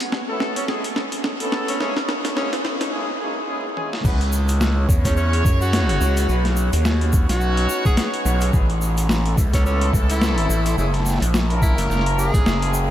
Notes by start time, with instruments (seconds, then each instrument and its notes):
0.00 closed hi-hat
0.12 snare
0.28 horn section A3 B3 C#4 E4 A4
0.40 snare
0.56 tenor saxophone C#4, closed hi-hat
0.68 horn section G#3 B3 C#4 E4 G#4, snare
0.84 closed hi-hat
0.96 snare
1.12 closed hi-hat
1.24 snare
1.40 horn section A3 B3 C#4 E4 A4, closed hi-hat
1.52 snare
1.68 tenor saxophone C#4, closed hi-hat
1.80 horn section G#3 A#3 C#4 E4 G#4, tenor saxophone C#4, snare
1.97 snare
2.09 snare
2.25 snare, closed hi-hat
2.37 horn section G#3 A#3 C#4 E4 G#4, tenor saxophone C#4, snare
2.53 snare, closed hi-hat
2.65 snare
2.81 snare, closed hi-hat
2.92 horn section G#3 A#3 C#4 E4 G#4
3.20 horn section G#3 A#3 C#4 E4 G#4
3.48 horn section G#3 A#3 C#4 E4 G#4
3.76 horn section G#3 A#3 C#4 E4 G#4, high tom
3.93 snare
4.04 analog synth bass C#2, horn section B3 C#4 E4 G#4 B4, kick, crash, shaker
4.21 closed hi-hat
4.32 shaker
4.48 closed hi-hat, shaker
4.61 snare, shaker
4.77 horn section C#4 E4 G#4 C#5
4.89 analog synth bass E2, kick, shaker
5.05 tenor saxophone C#4, kick, snare, closed hi-hat, shaker
5.17 tenor saxophone C#4, shaker
5.33 closed hi-hat
5.45 analog synth bass F#2, kick, shaker
5.61 tenor saxophone F#4, shaker
5.73 snare, closed hi-hat, shaker
5.89 closed hi-hat
6.01 analog synth bass C#2, shaker
6.17 closed hi-hat, shaker
6.29 analog synth bass B1, horn section B3 D#4 F#4 B4, shaker
6.45 snare, closed hi-hat
6.57 shaker
6.73 analog synth bass D#2, closed hi-hat, shaker
6.85 snare, shaker
7.01 horn section B3 C#4 D#4 F#4 C#5, closed hi-hat
7.13 kick, shaker
7.29 analog synth bass B1, tenor saxophone F#4, snare, closed hi-hat, shaker
7.41 shaker
7.57 closed hi-hat
7.69 shaker
7.85 tenor saxophone G#4, kick, shaker
7.97 tenor saxophone G#4, snare, closed hi-hat, shaker
8.14 closed hi-hat
8.25 analog synth bass B1, shaker
8.41 closed hi-hat, shaker
8.53 analog synth bass A1, horn section G#3 B3 C#4 E4 G#4, kick, shaker
8.70 closed hi-hat
8.81 shaker
8.97 closed hi-hat, shaker
9.09 snare, shaker
9.25 horn section A3 B3 C#4 E4 A4, closed hi-hat
9.37 analog synth bass C#2, kick, shaker
9.53 tenor saxophone C#4, kick, snare, closed hi-hat, shaker
9.66 tenor saxophone C#4, shaker
9.81 closed hi-hat
9.93 analog synth bass C#2, kick, shaker
10.10 tenor saxophone E4, closed hi-hat, shaker
10.22 snare, shaker
10.38 closed hi-hat
10.50 analog synth bass A1, shaker
10.66 tenor saxophone E4, closed hi-hat, shaker
10.78 analog synth bass F#1, horn section G#3 A#3 C#4 E4 G#4, tenor saxophone E4, shaker
10.94 snare, closed hi-hat
10.97 snare
11.00 snare
11.03 snare, shaker
11.06 snare
11.10 snare
11.14 snare
11.18 analog synth bass A#1, snare, closed hi-hat
11.22 shaker
11.34 snare, shaker
11.50 horn section A#3 C#4 E4 A#4, closed hi-hat
11.62 tenor saxophone E4, kick, shaker
11.78 analog synth bass F#1, snare, closed hi-hat, shaker
11.81 snare
11.86 analog synth bass F#1, snare
11.90 snare, shaker
11.96 snare
11.99 snare
12.06 closed hi-hat
12.19 tenor saxophone G#4, shaker
12.34 analog synth bass A#1, horn section G#3 A#3 C#4 E4 G#4, kick, closed hi-hat, shaker
12.46 analog synth bass F#1, snare, shaker
12.62 closed hi-hat
12.74 shaker